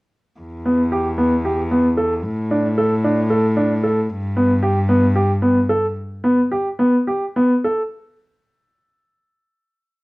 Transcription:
0.40 E2
0.66 B3
0.92 G4
1.18 B3
1.45 G4
1.71 B3
1.97 A4
2.25 A2
2.51 D4
2.78 A4
3.04 D4
3.30 A4
3.57 D4
3.84 A4
4.10 G2
4.37 B3
4.63 G4
4.89 B3
5.15 G4
5.42 B3
5.69 A4
6.24 B3
6.51 G4
6.79 B3
7.07 G4
7.36 B3
7.65 A4

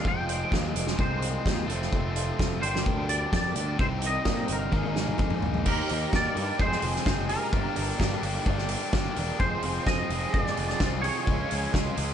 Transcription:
0.02 F1 F2 C3 F3 G#3 C4 F4, kick
0.08 G5
0.29 closed hi-hat
0.52 D#2, kick, snare
0.75 F1, closed hi-hat
0.87 snare
0.97 C2 G#3 C4 F4 C5, kick
1.22 closed hi-hat
1.45 D#2, kick, snare
1.66 F1 F2 C3 F3 A3 C4 F4, closed hi-hat
1.82 snare
1.93 F1, kick
2.16 closed hi-hat
2.39 F1, kick, snare
2.60 G1 G2 D3 G3 A#3 D4 G4 C5, closed hi-hat
2.75 snare
2.86 D2, kick
3.09 D5, closed hi-hat
3.33 F2 D5, kick, snare
3.56 D2 D4 G4, closed hi-hat
3.60 A#3
3.76 C2 C3 G3 C4 D#4 G4 C5, kick
4.02 closed hi-hat
4.06 D#5
4.25 A#2, kick, snare
4.48 G1, closed hi-hat
4.53 A#4
4.70 G#1 G#3 A#3 D#4 G#4, kick, high tom
4.83 high tom
4.96 snare
5.07 mid tom
5.18 F2, kick, mid tom
5.30 mid tom
5.42 A#1, floor tom
5.54 floor tom
5.65 D#2 D#3 A#3 D#4 G4 A#4, kick, crash
5.70 G4
5.87 D#2 D#3 A#3 D#4 G4, open hi-hat
6.11 D#2 D#3 A#3 D#4 G4 A#4, kick, snare
6.16 D5
6.33 G2 D#3 A#3 D#4 G4, open hi-hat
6.59 F1 F2 C3 F3 G#3 C4 G#4 C5, kick
6.72 snare
6.81 F1 F2 C3 F3 G#3 C4 G#4, open hi-hat
6.96 snare
7.04 F#1 F2 C3 F3 G#3 C4 G#4, kick, snare
7.28 F2 C3 F3 G#3 C4 G4 G#4 A#4, open hi-hat
7.51 G1 G2 D3 G3 A#3 D4 G4, kick
7.75 G1 G2 D3 G3 A#3 D4 G4, open hi-hat
7.97 G1 G2 D3 G3 A#3 D4 G4, kick, snare
8.21 G1 G2 D3 G3 A#3 D4 G4, open hi-hat
8.44 G1 G2 D3 G3 A#3 D4 G4, kick
8.58 snare
8.68 G2 D3 G3 A#3 D4 G4, open hi-hat
8.91 G1 G2 D3 G3 A#3 D4 G4, kick, snare
9.14 E1 G2 D3 G3 A#3 D4 G4, open hi-hat
9.37 F1 F2 C3 F3 G#3 C4 G#4 C5, kick
9.42 F4 G#4
9.62 F1 F2 C3 F3 G#3 C4 F4 G#4, open hi-hat
9.83 F1 F2 C3 F3 C5 D#5, kick, snare
9.87 G#3 C4 F4 G#4
10.10 F1 F2 C3 F3 G#3 C4 F4 G#4, open hi-hat
10.30 F1 F2 C3 F3 G#3 C4 G#4 D#5, kick
10.35 F4
10.44 D5, snare
10.56 F1 F2 C3 F3 G#3 C4 F4 G#4, open hi-hat
10.69 snare
10.78 C2 F2 C3 F3 G#3 C4 G#4, kick, snare
10.82 F4
11.01 F2 C3 F3 G#3 C4 F4 G#4 C#5, open hi-hat
11.23 C#3 F3 G#3 C#4 F4
11.27 C#2, kick
11.48 C#3 F3 G#3 C#4 F4, open hi-hat
11.52 C#2
11.71 C#2 C#3 F3 G#3 C#4 F4, kick, snare
11.94 C#2 C#3 F3 G#3 C#4 F4, open hi-hat

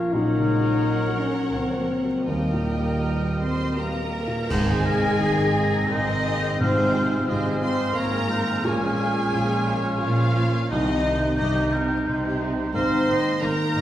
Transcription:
Already playing: A#2 F3 A#3 C#4 F4 A#4 C#5 F5
0.11 A#1 A#2 F#3 D#4 A#4 C#5 F#5
0.36 C#3 F#3
0.47 G#3
0.59 A#3 F#4
0.81 F#3 A#4 F#5
1.06 F#4 A#4
1.19 C#4
1.30 A#4
1.53 C#2 F3 C4 A#4 F#5
1.77 A#3 F#4
1.91 F#3
2.02 F#3 A#3
2.27 D#2 D#3 G3 A#3 A#4 D#5 G5
2.53 A#2 D#4
2.78 A#3 G4
3.03 G4 A#4
3.27 G4 A#4
3.40 C4 C5 C6
3.52 G4 A#4
3.76 A#3 G4 A#4 A#5
4.01 A#3 G4
4.27 A#2 A#3
4.49 G#1 G#2 G#3 A#3 C4 G#4 C5 G#5 A#6, concert bass drum, crash
4.67 D#3 C4 A#4
4.84 C3 A#3 G#4 A#4
5.03 C4 G#4 A#4
5.20 G#1 G#2 D#3 A#3 G#4 A#4
5.36 C4 A#4 D#5
5.53 A#3 G#4 G#5
5.71 C4 A#4 A#5
5.89 G#1 G#2 D#3 A#3 D#4 G#4 C5 D#5 G#5
6.07 C4 A#4
6.24 A#3 G#4
6.41 C4 A#4
6.60 G#1 G#2 C3 C4 F4 C5 F5 F6
6.77 G#3 C4 G#4
6.94 F4
7.11 C4 F4 G#4
7.27 G#1 G#2 C3 G#3 C4 F4 C5 D#5
7.44 C4 F4 G#4
7.60 C4 F4 C5 F5 C6
7.77 C4 G#4 C6
7.94 G#1 G#2 A#3 F4 A#4 C#5 F5 A#5
8.12 C4 G#4 C5
8.29 F4 C5
8.46 C4 G#4
8.63 A#1 A#2 G#3 A#3 C#4 F4 G#4 C#5 G#5
8.80 F3 C#4 G#4
8.97 A#3 F4
9.15 C#4 F4 G#4
9.30 A#1 A#2 F3 A#3 F4 C#5
9.48 C#4 G#4 A#4
9.66 A#3 F4 F5
9.83 C#4 G#4 C#6
10.00 A#1 A#2 F3 A#3 F4 F5
10.17 C#4 G#4 C#5
10.35 A#3 F4
10.51 A#3 C#4 G#4
10.68 C2 C3 D#3 D#4 D#5 G6
10.86 C4 G4
11.02 G3 D#4
11.20 C4 D#4 G4
11.36 C2 G2 C3 D#3 D#4 G4 D#5
11.54 C4 G4
11.70 D#4 A#4 D#5
11.87 C4 G4 C6
12.05 C2 C3 D#4 C5 D#5
12.22 C4 G4
12.38 D#4
12.55 G3 C4 G4
12.72 G#1 G#2 A#3 D#4 C5 F5 C6 A#6
12.77 C4
12.90 D#3
13.07 G#1 G#2 A#3 D#4
13.11 D#5
13.41 G#1 G#2 D#3 A#3 D#4 A#4 C5 A#5 A#6
13.59 A#4
13.74 G#1 G#2 A#3 D#4 D#5

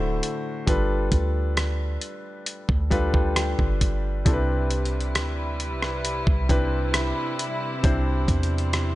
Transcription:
Already playing: D1 D3 A3 E4 F#4 C5
0.23 closed hi-hat
0.66 G1 G3 D4 F4 A4 B4, kick, closed hi-hat
1.12 D2, kick, closed hi-hat
1.57 cross-stick, closed hi-hat
2.01 closed hi-hat
2.46 closed hi-hat
2.69 D2, kick
2.90 G3 D4 F4 A4 B4 F5, kick, closed hi-hat
3.14 G5, kick
3.36 G5, cross-stick, closed hi-hat
3.59 G1, kick
3.81 kick, closed hi-hat
4.25 C2 C3 G3 C4 D4 E4 A4 B4, kick, closed hi-hat
4.33 B4
4.71 closed hi-hat
4.85 closed hi-hat
5.01 closed hi-hat
5.15 D2, cross-stick, closed hi-hat
5.60 closed hi-hat
5.72 C2
5.82 cross-stick
6.05 closed hi-hat
6.27 C2, kick
6.49 C3 C4 D4 E4 B4, kick, closed hi-hat
6.94 cross-stick, closed hi-hat
7.39 closed hi-hat
7.83 C2 C3 C4 D4 E4 C5, kick, closed hi-hat
8.28 E2, kick, closed hi-hat
8.43 closed hi-hat
8.58 closed hi-hat
8.73 cross-stick, closed hi-hat

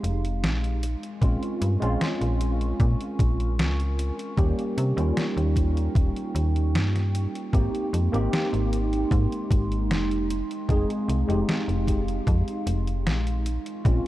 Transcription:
Already playing: G#3 C4 D#4 G4 G#4 F5 C6
0.03 F1, closed hi-hat
0.25 closed hi-hat
0.43 A#1, snare, closed hi-hat
0.64 closed hi-hat
0.83 F4 A#4 G#5 C#6, closed hi-hat
1.03 closed hi-hat
1.21 A#1 G#3 C4 C#4 F4, kick, closed hi-hat
1.43 closed hi-hat
1.61 G2, closed hi-hat
1.80 A#1 G#3 C4 C#4 F4, closed hi-hat
2.01 snare, closed hi-hat
2.21 A#1, closed hi-hat
2.41 closed hi-hat
2.61 closed hi-hat
2.80 A#2, kick, closed hi-hat
3.00 closed hi-hat
3.19 A#1, kick, closed hi-hat
3.40 closed hi-hat
3.59 C#2, snare, closed hi-hat
3.80 closed hi-hat
3.99 closed hi-hat
4.19 closed hi-hat
4.37 D#2 G3 A#3 C#4 D#4 G4 G5, kick, closed hi-hat
4.59 closed hi-hat
4.78 C3, closed hi-hat
4.97 D#2 G3 A#3 C#4 F4, closed hi-hat
5.17 snare, closed hi-hat
5.37 D#2, closed hi-hat
5.56 kick, closed hi-hat
5.77 closed hi-hat
5.95 D#1, kick, closed hi-hat
6.16 closed hi-hat
6.35 D#2, closed hi-hat
6.56 closed hi-hat
6.74 G2, snare, closed hi-hat
6.96 snare, closed hi-hat
7.15 closed hi-hat
7.35 closed hi-hat
7.53 G#1 G#3 A#3 C4 D#4 G4 C6, kick, closed hi-hat
7.75 closed hi-hat
7.93 F2, closed hi-hat
8.12 G#1 A#3 C4 D#4 G4, closed hi-hat
8.33 snare, closed hi-hat
8.53 G#1, closed hi-hat
8.73 closed hi-hat
8.93 closed hi-hat
9.11 G#2, kick, closed hi-hat
9.32 closed hi-hat
9.50 G#1, kick, closed hi-hat
9.72 closed hi-hat
9.90 F1, snare, closed hi-hat
10.11 closed hi-hat
10.30 F5, closed hi-hat
10.51 closed hi-hat
10.69 F1 G#3 C4 D#4 G#4, kick, closed hi-hat
10.90 closed hi-hat
11.08 C2, closed hi-hat
11.27 F1 G#3 C4 D#4 G4, closed hi-hat
11.49 snare, closed hi-hat
11.68 F1, closed hi-hat
11.88 kick, closed hi-hat
12.08 closed hi-hat
12.27 F2, kick, closed hi-hat
12.48 closed hi-hat
12.67 F1, closed hi-hat
12.87 closed hi-hat
13.06 A#1, snare, closed hi-hat
13.27 closed hi-hat
13.46 F4 A#4 G#5 C#6, closed hi-hat
13.66 closed hi-hat
13.84 A#1 G#3 C4 C#4 F4, kick, closed hi-hat

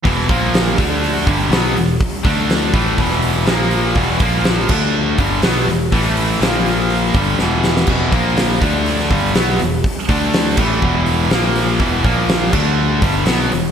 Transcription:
0.04 E1 E2 B2 E3, kick, open hi-hat
0.29 A#1 A#2 F3 A#3, kick, open hi-hat
0.54 snare, open hi-hat
0.78 D2 D3 A3 D4, kick, open hi-hat
1.04 open hi-hat
1.17 snare
1.27 G1 G2 D3 G3, kick, open hi-hat
1.50 B1 B2 F#3 B3, snare, open hi-hat
1.76 E1 E2 B2, open hi-hat
2.01 kick, open hi-hat
2.24 D2 D3 A3 D4, kick, open hi-hat
2.50 snare, open hi-hat
2.73 A1 A2 E3 A3, kick, open hi-hat
2.98 E1 E2 B2 E3, kick, open hi-hat
3.11 snare
3.22 open hi-hat
3.45 A#1 A#2 F3 A#3, snare, open hi-hat
3.71 open hi-hat
3.95 E1 E2 B2 E3, kick, open hi-hat
4.20 A#1 A#2 F3 A#3, kick, open hi-hat
4.44 snare, open hi-hat
4.69 D2 D3 A3 D4, kick, crash
5.18 G1 G2 D3 G3, kick, open hi-hat
5.42 B1 B2 F#3 B3, snare, open hi-hat
5.66 E1 E2 B2, snare, open hi-hat
5.92 A1 A2 E3 A3, kick, open hi-hat
6.17 open hi-hat
6.40 A#1 A#2 F3 A#3, snare, open hi-hat
6.66 open hi-hat
6.90 open hi-hat
7.14 G1 G2 D3 G3, kick, open hi-hat
7.38 E1 E2 B2 E3, snare
7.64 snare
7.77 snare
7.87 E1 E2 B2 E3, kick, crash
8.12 A#1 A#2 F3 A#3, kick, open hi-hat
8.37 snare, open hi-hat
8.61 D2 D3 A3 D4, kick, open hi-hat
8.86 open hi-hat
9.00 snare
9.10 G1 G2 D3 G3, kick, open hi-hat
9.34 B1 B2 F#3 B3, snare, open hi-hat
9.59 E1 E2 B2, snare, open hi-hat
9.84 kick, open hi-hat
10.09 D2 D3 A3 D4, kick, open hi-hat
10.33 snare, open hi-hat
10.57 A1 A2 E3 A3, kick, crash
10.82 E1 E2 B2 E3, kick
11.06 open hi-hat
11.30 A#1 A#2 F3 A#3, snare, open hi-hat
11.56 snare, open hi-hat
11.79 E1 E2 B2 E3, kick, open hi-hat
12.04 A#1 A#2 F3 A#3, kick, open hi-hat
12.29 snare, open hi-hat
12.53 D2 D3 A3 D4, kick, crash
13.02 G1 G2 D3 G3, kick, open hi-hat
13.26 B1 B2 F#3 B3, snare, open hi-hat
13.49 E2 B2, open hi-hat
13.53 E1 E2 B2

